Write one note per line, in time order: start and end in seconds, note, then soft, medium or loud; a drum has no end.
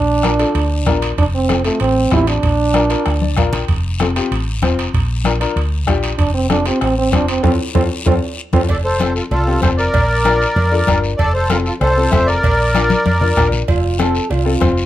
0.00 0.43 A#1 medium
0.00 0.98 D4 loud
0.23 0.29 D4 medium
0.23 0.29 F4 medium
0.23 0.29 A#4 medium
0.23 bombo rim medium
0.23 high conga medium
0.23 high timbale medium
0.23 short guiro medium
0.39 0.56 D4 medium
0.39 0.56 F4 medium
0.39 0.56 A4 medium
0.39 high timbale medium
0.39 short guiro medium
0.55 0.86 D2 medium
0.55 high timbale medium
0.55 long guiro medium
0.86 1.12 A#1 medium
0.86 1.08 D4 medium
0.86 1.09 F4 medium
0.86 1.09 A#4 medium
0.86 bombo low medium
0.86 bombo rim medium
0.86 high conga medium
0.86 high timbale medium
0.86 low timbale medium
0.86 short guiro medium
1.02 high timbale medium
1.02 short guiro medium
1.18 1.68 F1 medium
1.18 1.25 D4 medium
1.18 bombo low medium
1.18 high conga soft
1.18 high timbale medium
1.18 long guiro medium
1.35 1.64 C4 medium
1.49 1.55 C4 medium
1.49 1.55 F4 medium
1.49 1.55 A4 medium
1.49 bombo rim medium
1.49 high conga medium
1.49 high timbale medium
1.49 short guiro medium
1.64 1.80 A3 medium
1.64 1.81 C4 medium
1.64 1.81 F4 medium
1.64 1.82 A4 medium
1.64 high timbale medium
1.64 short guiro medium
1.80 2.06 A1 medium
1.80 2.10 C4 medium
1.80 high conga soft
1.80 high timbale medium
1.80 long guiro medium
2.11 2.37 A1 medium
2.11 2.34 C4 medium
2.11 2.27 E4 loud
2.11 2.34 F4 medium
2.11 2.34 G4 medium
2.11 bombo low medium
2.11 bombo rim medium
2.11 high conga medium
2.11 high timbale medium
2.11 low timbale medium
2.11 short guiro medium
2.27 3.49 D4 medium
2.27 high timbale medium
2.27 short guiro medium
2.43 2.93 A#1 medium
2.43 bombo low medium
2.43 high conga soft
2.43 high timbale medium
2.43 long guiro medium
2.74 2.80 D4 medium
2.74 2.80 F4 medium
2.74 2.80 A#4 medium
2.74 bombo rim medium
2.74 high conga medium
2.74 high timbale medium
2.74 short guiro medium
2.89 3.06 D4 medium
2.89 3.07 F4 medium
2.89 3.07 A#4 medium
2.89 high timbale medium
2.89 short guiro medium
3.05 3.37 D2 medium
3.05 bombo rim medium
3.05 high conga soft
3.05 high timbale medium
3.05 long guiro medium
3.21 3.36 D5 medium
3.21 high conga medium
3.37 3.62 A#1 medium
3.37 3.59 D4 medium
3.37 3.60 F4 medium
3.37 3.60 A#4 medium
3.37 3.52 F5 medium
3.37 bombo low medium
3.37 bombo rim medium
3.37 high conga medium
3.37 high timbale medium
3.37 short guiro medium
3.53 3.68 G5 medium
3.53 low conga medium
3.53 high timbale medium
3.53 short guiro medium
3.68 4.19 F1 medium
3.68 bombo low medium
3.68 high conga soft
3.68 high timbale medium
3.68 long guiro medium
4.00 4.05 C4 medium
4.00 4.06 F4 medium
4.00 4.06 A4 medium
4.00 bombo rim medium
4.00 high conga medium
4.00 high timbale medium
4.00 short guiro medium
4.16 4.32 C4 medium
4.16 4.32 F4 medium
4.16 4.33 G4 medium
4.16 high timbale medium
4.16 short guiro medium
4.31 4.63 A1 medium
4.31 high conga soft
4.31 high timbale medium
4.31 long guiro medium
4.62 4.88 F1 medium
4.62 4.84 C4 medium
4.62 4.85 F4 medium
4.62 4.85 C5 medium
4.62 bombo low medium
4.62 bombo rim medium
4.62 high conga medium
4.62 high timbale medium
4.62 short guiro medium
4.79 high timbale medium
4.79 short guiro medium
4.93 5.44 A#1 loud
4.93 bombo low medium
4.93 high conga soft
4.93 high timbale medium
4.93 long guiro medium
5.24 5.30 D4 medium
5.24 5.31 F4 medium
5.24 5.31 A#4 medium
5.24 bombo rim medium
5.24 high conga medium
5.24 high timbale medium
5.24 short guiro medium
5.40 5.57 D4 medium
5.40 5.57 F4 medium
5.40 5.57 A#4 medium
5.40 high timbale medium
5.40 short guiro medium
5.56 5.88 D2 medium
5.56 high conga soft
5.56 high timbale medium
5.56 long guiro medium
5.87 6.13 A#1 medium
5.87 6.09 D4 medium
5.87 6.09 F4 medium
5.87 6.09 G4 loud
5.87 bombo low medium
5.87 bombo rim medium
5.87 high conga medium
5.87 high timbale medium
5.87 short guiro medium
6.03 high timbale medium
6.03 short guiro medium
6.18 6.69 F1 loud
6.18 6.33 D4 medium
6.18 bombo low medium
6.18 high conga soft
6.18 high timbale medium
6.18 long guiro medium
6.34 6.49 C4 medium
6.49 6.55 C4 medium
6.49 6.65 D4 medium
6.49 6.55 F4 medium
6.49 6.56 A4 medium
6.49 bombo rim medium
6.49 high conga medium
6.49 high timbale medium
6.49 short guiro medium
6.65 6.82 C4 medium
6.65 6.81 C4 medium
6.65 6.82 F4 medium
6.65 6.82 G4 medium
6.65 high timbale medium
6.65 short guiro medium
6.81 7.13 A1 medium
6.81 6.97 C4 medium
6.81 bombo rim medium
6.81 high conga soft
6.81 high timbale medium
6.81 long guiro medium
6.98 7.15 C4 medium
7.12 7.38 F1 medium
7.12 7.34 C4 medium
7.12 7.28 D4 medium
7.12 7.34 F4 medium
7.12 7.35 C5 medium
7.12 bombo low medium
7.12 bombo rim medium
7.12 high conga medium
7.12 high timbale medium
7.12 short guiro medium
7.28 7.43 C4 medium
7.28 high timbale medium
7.28 short guiro medium
7.43 7.56 F2 medium
7.43 7.53 C4 medium
7.43 7.52 C4 medium
7.43 7.53 F4 medium
7.43 7.53 A4 medium
7.43 bombo low loud
7.43 high conga medium
7.43 high timbale medium
7.43 long guiro medium
7.75 7.87 F2 medium
7.75 7.85 C4 medium
7.75 7.83 C4 medium
7.75 7.85 F4 medium
7.75 7.85 A4 medium
7.75 bombo low medium
7.75 high conga medium
7.75 high timbale medium
7.75 long guiro loud
8.06 8.18 F2 medium
8.06 8.16 C4 medium
8.06 8.15 C4 medium
8.06 8.16 F4 medium
8.06 8.16 A4 medium
8.06 bombo low medium
8.06 high conga medium
8.06 high timbale medium
8.06 long guiro medium
8.53 8.65 F2 medium
8.53 8.63 C4 medium
8.53 8.61 C4 medium
8.53 8.63 F4 medium
8.53 8.63 A4 medium
8.53 bombo low medium
8.53 high conga medium
8.53 high timbale loud
8.53 long guiro medium
8.69 9.19 F1 medium
8.69 8.77 A4 medium
8.69 8.77 D5 medium
8.69 bombo low medium
8.69 cowbell loud
8.69 high conga soft
8.69 long guiro medium
8.84 9.14 A4 medium
8.84 9.13 C5 medium
9.00 9.16 C4 medium
9.00 9.16 F4 medium
9.00 9.17 A4 medium
9.00 bombo rim medium
9.00 cowbell medium
9.00 high conga medium
9.00 short guiro medium
9.16 9.24 F4 medium
9.16 9.23 A4 medium
9.16 short guiro medium
9.31 9.56 C2 medium
9.31 9.61 F4 medium
9.31 9.60 A4 medium
9.31 cowbell medium
9.31 high conga soft
9.31 low conga medium
9.31 long guiro medium
9.47 9.52 C4 medium
9.47 9.53 F4 medium
9.47 9.53 G4 medium
9.61 9.88 F1 medium
9.61 9.85 C4 medium
9.61 9.85 F4 medium
9.61 9.70 A4 medium
9.61 9.69 C5 medium
9.61 9.85 C5 medium
9.61 bombo low medium
9.61 bombo rim medium
9.61 cowbell medium
9.61 high conga medium
9.61 short guiro medium
9.77 10.99 A#4 medium
9.77 10.98 D5 loud
9.77 short guiro medium
9.94 10.44 A#1 medium
9.94 bombo low medium
9.94 cowbell loud
9.94 high conga soft
9.94 low conga medium
9.94 long guiro medium
10.25 10.41 D4 medium
10.25 10.42 F4 medium
10.25 10.42 A#4 loud
10.25 bombo rim medium
10.25 cowbell medium
10.25 high conga medium
10.25 short guiro medium
10.42 short guiro medium
10.56 10.81 F2 medium
10.56 cowbell medium
10.56 high conga soft
10.56 low conga medium
10.56 long guiro medium
10.71 10.77 D4 medium
10.71 10.77 F4 medium
10.71 10.78 A4 medium
10.87 11.13 G1 medium
10.87 11.09 D4 medium
10.87 11.09 F4 medium
10.87 11.09 A#4 loud
10.87 bombo low medium
10.87 bombo rim medium
10.87 cowbell medium
10.87 high conga medium
10.87 short guiro medium
11.04 short guiro medium
11.17 11.69 F1 medium
11.17 11.33 A4 medium
11.17 11.32 D5 loud
11.17 bombo low medium
11.17 cowbell loud
11.17 high conga soft
11.17 long guiro medium
11.34 11.50 A4 medium
11.34 11.49 C5 medium
11.49 11.66 C4 medium
11.49 11.66 F4 medium
11.49 11.58 F4 medium
11.49 11.67 A4 medium
11.49 11.56 A#4 medium
11.49 bombo rim medium
11.49 cowbell medium
11.49 high conga medium
11.49 short guiro medium
11.65 11.74 F4 medium
11.65 11.72 A4 medium
11.65 short guiro medium
11.81 12.06 C2 medium
11.81 12.11 A4 medium
11.81 12.11 C5 loud
11.81 bombo rim medium
11.81 cowbell medium
11.81 high conga soft
11.81 low conga medium
11.81 long guiro medium
11.97 12.02 C4 medium
11.97 12.02 F4 medium
11.97 12.03 A4 medium
12.11 12.37 F1 medium
12.11 12.34 C4 medium
12.11 12.34 F4 medium
12.11 12.34 A4 medium
12.11 12.27 C5 medium
12.11 12.28 E5 medium
12.11 bombo low medium
12.11 bombo rim medium
12.11 cowbell medium
12.11 high conga medium
12.11 short guiro medium
12.26 13.49 A#4 medium
12.26 13.48 D5 loud
12.26 short guiro medium
12.43 12.93 A#1 medium
12.43 bombo low medium
12.43 cowbell loud
12.43 high conga soft
12.43 long guiro medium
12.74 12.91 D4 medium
12.74 12.91 F4 medium
12.74 12.91 A#4 medium
12.74 bombo rim medium
12.74 cowbell medium
12.74 high conga medium
12.74 short guiro medium
12.90 high conga loud
12.90 short guiro medium
13.06 13.31 F2 medium
13.06 cowbell medium
13.06 high conga loud
13.06 long guiro medium
13.21 13.27 D4 medium
13.21 13.27 F4 medium
13.21 13.27 A#4 medium
13.21 low conga medium
13.37 13.62 A#1 medium
13.37 13.59 D4 medium
13.37 13.59 F4 medium
13.37 13.59 A#4 medium
13.37 bombo low medium
13.37 bombo rim medium
13.37 cowbell medium
13.37 low conga medium
13.37 short guiro medium
13.52 low conga medium
13.52 short guiro medium
13.68 14.18 F1 medium
13.68 13.97 F4 medium
13.68 bombo low medium
13.68 cowbell loud
13.68 high conga soft
13.68 long guiro medium
13.99 14.15 C4 medium
13.99 14.15 F4 medium
13.99 14.16 A4 medium
13.99 14.32 A4 loud
13.99 bombo rim medium
13.99 cowbell medium
13.99 high conga medium
13.99 short guiro medium
14.15 short guiro medium
14.30 14.55 C2 medium
14.30 14.86 F4 medium
14.30 cowbell medium
14.30 high conga soft
14.30 low conga medium
14.30 long guiro medium
14.45 14.51 C4 medium
14.45 14.51 F4 medium
14.45 14.51 A4 medium
14.60 14.86 F1 medium
14.60 14.83 C4 medium
14.60 14.83 F4 medium
14.60 14.83 C5 medium
14.60 bombo low medium
14.60 bombo rim medium
14.60 cowbell medium
14.60 high conga medium
14.60 short guiro medium
14.77 short guiro medium